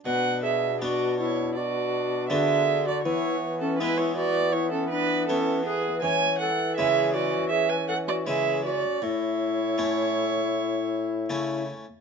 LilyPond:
<<
  \new Staff \with { instrumentName = "Viola" } { \time 4/4 \key b \dorian \tempo 4 = 80 fis''8 e''8 d''8 cis''8 d''4 e''8. d''16 | cis''8. a'16 b'16 cis''16 d''8 cis''16 a'16 b'8 a'8 gis'8 | gis''8 fis''8 e''8 d''8 e''16 gis''16 fis''16 d''16 e''8 d''8 | cis''2.~ cis''8 r8 | }
  \new Staff \with { instrumentName = "Recorder" } { \time 4/4 \key b \dorian b'8 gis'8 fis'8 e'8 fis'4 gis'8. fis'16 | e'8. cis'16 e'16 e'16 fis'8 e'16 cis'16 d'8 cis'8 b'8 | cis''8 a'8 gis'8 fis'8 gis'16 b'16 a'16 fis'16 gis'8 fis'8 | e'2.~ e'8 r8 | }
  \new Staff \with { instrumentName = "Bassoon" } { \time 4/4 \key b \dorian d'4 d'4 d'2 | b4 b2. | cis'8 r8 cis'4 cis'4 cis'4 | e'2.~ e'8 r8 | }
  \new Staff \with { instrumentName = "Harpsichord" } { \time 4/4 \key b \dorian r4 <b d' fis'>4 r4 <b d' fis'>4 | r4 <gis b e'>4 r4 <b e'>4 | r4 <cis gis e'>4 r4 <cis gis e'>4 | r4 <a cis' e'>4 r4 <a cis' e'>4 | }
  \new Staff \with { instrumentName = "Harpsichord" } { \clef bass \time 4/4 \key b \dorian b,2. d4 | e1 | e2.~ e8 r8 | a,2. cis8 r8 | }
  \new Staff \with { instrumentName = "Bassoon" } { \clef bass \time 4/4 \key b \dorian b,2. d4 | e1 | e2.~ e8 r8 | a,2. cis8 r8 | }
>>